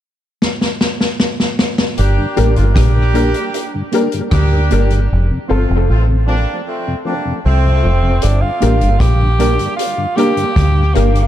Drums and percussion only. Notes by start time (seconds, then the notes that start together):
0.42 snare
0.61 snare
0.81 snare
1.01 snare
1.20 snare
1.40 snare
1.59 snare
1.78 snare
1.98 closed hi-hat
2.37 closed hi-hat
2.56 closed hi-hat
2.76 kick, cross-stick, closed hi-hat
3.15 closed hi-hat
3.34 closed hi-hat
3.54 closed hi-hat
3.92 closed hi-hat
4.12 closed hi-hat
4.31 kick, cross-stick, closed hi-hat
4.71 closed hi-hat
4.90 closed hi-hat
8.22 closed hi-hat
8.62 closed hi-hat
8.81 closed hi-hat
9.00 kick, cross-stick, closed hi-hat
9.40 closed hi-hat
9.59 closed hi-hat
9.79 closed hi-hat
10.18 closed hi-hat
10.37 closed hi-hat
10.56 kick, cross-stick, closed hi-hat
10.95 cross-stick, closed hi-hat
11.15 closed hi-hat